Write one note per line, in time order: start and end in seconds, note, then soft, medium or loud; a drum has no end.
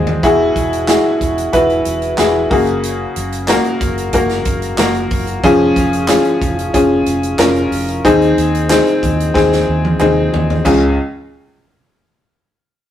0.00 0.17 D#2 loud
0.00 0.25 G#3 medium
0.00 0.25 C4 medium
0.00 0.25 D#4 medium
0.00 0.24 F#4 medium
0.00 0.24 G#4 medium
0.07 floor tom medium
0.23 0.50 E1 loud
0.23 1.17 B2 medium
0.23 0.79 E4 loud
0.23 0.79 F#4 medium
0.23 0.80 G#4 loud
0.23 kick loud
0.23 closed hi-hat medium
0.56 0.96 E1 medium
0.56 kick medium
0.56 closed hi-hat medium
0.73 closed hi-hat medium
0.87 1.44 E4 medium
0.87 1.44 F#4 medium
0.87 1.44 G#4 medium
0.87 snare loud
0.87 clap medium
0.87 closed hi-hat medium
1.21 1.48 E1 medium
1.21 kick medium
1.21 closed hi-hat medium
1.38 closed hi-hat soft
1.53 1.80 E1 medium
1.53 2.09 E4 medium
1.53 2.09 F#4 medium
1.53 2.09 B4 medium
1.53 kick medium
1.53 closed hi-hat medium
1.70 closed hi-hat soft
1.85 2.13 E1 medium
1.85 closed hi-hat medium
2.02 closed hi-hat soft
2.18 2.46 E1 medium
2.18 2.51 E4 medium
2.18 2.49 F#4 medium
2.18 2.50 G#4 medium
2.18 snare loud
2.18 clap medium
2.18 closed hi-hat medium
2.50 3.04 F#1 medium
2.50 3.45 C#3 medium
2.50 3.35 A#3 medium
2.50 3.35 F#4 medium
2.50 3.35 G#4 medium
2.50 kick medium
2.50 open hi-hat medium
2.67 closed hi-hat soft
2.83 closed hi-hat medium
3.16 3.56 F#1 medium
3.16 closed hi-hat medium
3.32 closed hi-hat soft
3.48 4.05 A#3 medium
3.48 4.05 F#4 medium
3.48 4.05 A#4 medium
3.48 snare loud
3.48 clap medium
3.48 closed hi-hat medium
3.64 closed hi-hat soft
3.80 4.08 F#1 medium
3.80 kick medium
3.80 closed hi-hat medium
3.98 closed hi-hat medium
4.13 4.40 F#1 medium
4.13 4.70 A#3 medium
4.13 4.70 F#4 medium
4.13 4.70 A#4 medium
4.13 kick medium
4.13 closed hi-hat medium
4.29 snare soft
4.29 closed hi-hat soft
4.45 4.73 F#1 loud
4.45 kick medium
4.45 closed hi-hat medium
4.62 closed hi-hat soft
4.78 5.05 F#1 medium
4.78 5.35 A#3 medium
4.78 5.35 F#4 medium
4.78 5.35 A#4 medium
4.78 snare loud
4.78 clap medium
4.78 closed hi-hat medium
4.94 closed hi-hat soft
5.11 5.38 F#1 medium
5.11 kick medium
5.11 open hi-hat medium
5.27 closed hi-hat soft
5.44 5.71 F1 loud
5.44 6.38 F3 medium
5.44 6.00 C#4 loud
5.44 6.00 F4 loud
5.44 6.00 G#4 loud
5.44 kick loud
5.44 closed hi-hat medium
5.76 6.16 F1 loud
5.76 kick medium
5.76 closed hi-hat medium
5.93 closed hi-hat soft
6.08 6.65 C#4 medium
6.08 6.65 F4 medium
6.08 6.65 G#4 medium
6.08 snare loud
6.08 clap medium
6.08 closed hi-hat medium
6.25 closed hi-hat soft
6.42 6.68 F1 medium
6.42 kick medium
6.42 closed hi-hat medium
6.59 closed hi-hat medium
6.74 7.01 F1 loud
6.74 7.30 C#4 medium
6.74 7.30 F4 medium
6.74 7.30 G#4 medium
6.74 kick medium
6.74 closed hi-hat medium
7.06 7.34 F1 loud
7.06 closed hi-hat medium
7.23 closed hi-hat soft
7.39 7.66 F1 loud
7.39 7.95 C#4 medium
7.39 7.95 F4 medium
7.39 7.95 A#4 loud
7.39 snare loud
7.39 clap medium
7.39 closed hi-hat medium
7.55 closed hi-hat soft
7.71 7.98 F1 loud
7.71 open hi-hat medium
7.88 closed hi-hat soft
8.04 8.31 D#2 loud
8.04 8.99 D#3 medium
8.04 8.61 C4 loud
8.04 8.61 D#4 loud
8.04 8.61 G#4 loud
8.04 kick loud
8.04 closed hi-hat medium
8.22 closed hi-hat soft
8.37 8.77 D#2 loud
8.37 closed hi-hat medium
8.55 closed hi-hat soft
8.69 9.26 C4 medium
8.69 9.26 D#4 medium
8.69 9.26 G#4 medium
8.69 snare loud
8.69 clap medium
8.69 closed hi-hat medium
8.87 closed hi-hat soft
9.03 9.29 D#2 medium
9.03 kick medium
9.03 closed hi-hat medium
9.20 closed hi-hat medium
9.34 9.62 D#2 loud
9.34 9.91 C4 medium
9.34 9.91 D#4 medium
9.34 9.91 G#4 loud
9.34 kick medium
9.34 snare medium
9.52 snare soft
9.68 9.94 D#2 loud
9.85 high tom medium
10.00 10.27 D#2 medium
10.00 10.56 C4 medium
10.00 10.56 D#4 medium
10.00 10.56 G#4 medium
10.00 clap medium
10.00 mid tom medium
10.33 10.60 D#2 loud
10.33 floor tom medium
10.50 floor tom medium
10.65 10.95 C#2 medium
10.65 10.96 C#2 loud
10.65 10.95 C#4 medium
10.65 10.95 F4 medium
10.65 10.95 G#4 medium
10.65 kick medium
10.65 clap medium
10.65 floor tom medium
10.65 crash medium